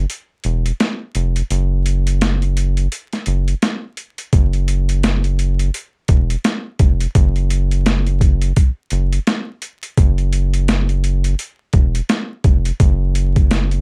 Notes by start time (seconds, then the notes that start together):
0.10 closed hi-hat
0.44 E1, closed hi-hat
0.66 closed hi-hat
0.80 snare, closed hi-hat
1.15 F1, closed hi-hat
1.36 closed hi-hat
1.51 F#1, closed hi-hat
1.86 closed hi-hat
2.07 closed hi-hat
2.21 snare, closed hi-hat
2.42 closed hi-hat
2.57 closed hi-hat
2.77 closed hi-hat
2.92 closed hi-hat
3.13 snare, closed hi-hat
3.26 F#1, closed hi-hat
3.48 closed hi-hat
3.62 snare, closed hi-hat
3.97 closed hi-hat
4.18 closed hi-hat
4.33 F#1, kick, closed hi-hat
4.53 closed hi-hat
4.68 closed hi-hat
4.89 closed hi-hat
5.03 snare, closed hi-hat
5.24 closed hi-hat
5.39 closed hi-hat
5.59 closed hi-hat
5.74 closed hi-hat
6.08 E1, kick, closed hi-hat
6.30 closed hi-hat
6.44 snare, closed hi-hat
6.79 F1, kick, closed hi-hat
7.00 closed hi-hat
7.15 F#1, kick, closed hi-hat
7.36 closed hi-hat
7.50 closed hi-hat
7.71 closed hi-hat
7.86 snare, closed hi-hat
8.07 closed hi-hat
8.21 kick, closed hi-hat
8.42 closed hi-hat
8.56 kick, closed hi-hat
8.90 F#1, closed hi-hat
9.12 closed hi-hat
9.27 snare, closed hi-hat
9.62 closed hi-hat
9.83 closed hi-hat
9.97 F#1, kick, closed hi-hat
10.18 closed hi-hat
10.33 closed hi-hat
10.54 closed hi-hat
10.68 snare, closed hi-hat
10.89 closed hi-hat
11.04 closed hi-hat
11.24 closed hi-hat
11.39 closed hi-hat
11.73 E1, kick, closed hi-hat
11.95 closed hi-hat
12.09 snare, closed hi-hat
12.44 F1, kick, closed hi-hat
12.65 closed hi-hat
12.80 F#1, kick, closed hi-hat
13.15 closed hi-hat
13.36 kick, closed hi-hat
13.51 snare, closed hi-hat
13.71 closed hi-hat